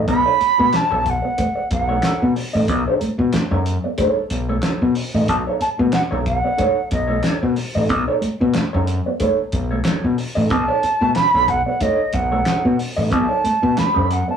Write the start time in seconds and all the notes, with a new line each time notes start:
0.07 B1 B3 B5, muted clean electric guitar stroke, kick, closed hi-hat
0.26 D#4 A4 C#5
0.41 muted clean electric guitar stroke, muted fingered electric bass stroke, closed hi-hat
0.58 B2 A3, muted clean electric guitar stroke
0.73 A5, muted clean electric guitar stroke, muted fingered electric bass stroke, snare, clap, closed hi-hat
0.91 B1 F#3 D#4 A4 C#5
1.04 muted clean electric guitar stroke, kick, closed hi-hat
1.10 F#5
1.22 B3, muted clean electric guitar stroke
1.37 A3, muted clean electric guitar stroke, kick, closed hi-hat
1.55 muted clean electric guitar stroke
1.71 B1 F#5, muted clean electric guitar stroke, kick, closed hi-hat
1.89 A3 D#4 A4 C#5
2.03 D#4 A4 C#5, snare, clap, closed hi-hat
2.22 B2 B3
2.36 muted clean electric guitar stroke, open hi-hat
2.53 A1 A3 D#4 A4 D#5
2.68 B1 B3, muted clean electric guitar stroke, kick, closed hi-hat
2.88 D#4 A4 C#5
3.01 A3, muted fingered electric bass stroke, muted clean electric guitar stroke, closed hi-hat
3.19 B2, muted clean electric guitar stroke
3.33 A3, muted fingered electric bass stroke, muted clean electric guitar stroke, snare, clap, closed hi-hat
3.51 F#2 D#4 A4 C#5
3.66 muted clean electric guitar stroke, closed hi-hat
3.84 B3, muted clean electric guitar stroke
3.98 A3 D#4 A4 C#5, kick, closed hi-hat
4.17 muted clean electric guitar stroke
4.30 B1, muted clean electric guitar stroke, closed hi-hat
4.49 A3 D#4 A4 C#5
4.63 F#3 D#4 A4 C#5, snare, clap, closed hi-hat
4.82 B2, muted clean electric guitar stroke
4.95 muted clean electric guitar stroke, open hi-hat
5.14 A1 A3 D#4 A4 D#5
5.28 B1 B3 A5, muted clean electric guitar stroke, kick, closed hi-hat
5.47 D#4 A4 C#5
5.60 A5, muted fingered electric bass stroke, muted clean electric guitar stroke, closed hi-hat
5.78 B2 A3, muted clean electric guitar stroke
5.92 F#5, muted clean electric guitar stroke, muted fingered electric bass stroke, snare, clap, closed hi-hat
6.11 B1 F#3 D#4 A4 C#5
6.26 F#5, muted clean electric guitar stroke, kick, closed hi-hat
6.44 B3, muted clean electric guitar stroke
6.58 A3 D#4 A4 C#5, kick, closed hi-hat
6.90 B1 D#5, muted clean electric guitar stroke, kick, closed hi-hat
7.07 A3 D#4 A4 C#5
7.22 D#4 A4 C#5, snare, clap, closed hi-hat
7.43 B2 B3
7.56 muted clean electric guitar stroke, open hi-hat
7.75 A1 A3 D#4 A4 D#5
7.88 B1 B3, kick, closed hi-hat
8.08 D#4 A4 C#5
8.21 A3, muted fingered electric bass stroke, closed hi-hat
8.41 B2, muted clean electric guitar stroke
8.54 A3, muted clean electric guitar stroke, muted fingered electric bass stroke, snare, clap, closed hi-hat
8.73 F#2 D#4 A4 C#5
8.87 muted clean electric guitar stroke, closed hi-hat
9.06 B3, muted clean electric guitar stroke
9.20 A3 D#4 A4 C#5, kick, closed hi-hat
9.40 muted clean electric guitar stroke
9.52 B1, muted clean electric guitar stroke, kick, closed hi-hat
9.71 A3 D#4 A4 C#5
9.85 F#3 D#4 A4 C#5, snare, clap, closed hi-hat
10.04 B2, muted clean electric guitar stroke
10.17 muted clean electric guitar stroke, open hi-hat
10.35 A1 A3 D#4 A4 D#5
10.50 B1 B3 A5, muted clean electric guitar stroke, kick, closed hi-hat
10.68 D#4 A4 C#5
10.83 muted fingered electric bass stroke, muted clean electric guitar stroke, closed hi-hat
11.01 B2 A3, muted clean electric guitar stroke
11.15 B5, muted fingered electric bass stroke, muted clean electric guitar stroke, snare, clap, closed hi-hat
11.34 B1 F#3 D#4 A4 C#5
11.48 F#5, muted clean electric guitar stroke, kick, closed hi-hat
11.66 B3 F#5, muted clean electric guitar stroke
11.81 A3 D#4 A4 C#5 D#5, kick, closed hi-hat
12.13 B1 F#5, muted clean electric guitar stroke, kick, closed hi-hat
12.32 A3 D#4 A4 C#5
12.46 D#4 A4 C#5, snare, clap, closed hi-hat
12.65 B2 B3
12.79 muted clean electric guitar stroke, open hi-hat
12.96 A1 A3 D#4 A4 D#5
13.10 B1 B3 A5, muted clean electric guitar stroke, kick, closed hi-hat
13.29 D#4 A4 C#5
13.43 A3, muted clean electric guitar stroke, muted fingered electric bass stroke, closed hi-hat
13.62 B2, muted clean electric guitar stroke
13.76 A3 B5, muted clean electric guitar stroke, muted fingered electric bass stroke, snare, clap, closed hi-hat
13.94 F#2 D#4 A4 C#5
14.09 muted clean electric guitar stroke, closed hi-hat
14.13 F#5
14.28 B3 A5, muted clean electric guitar stroke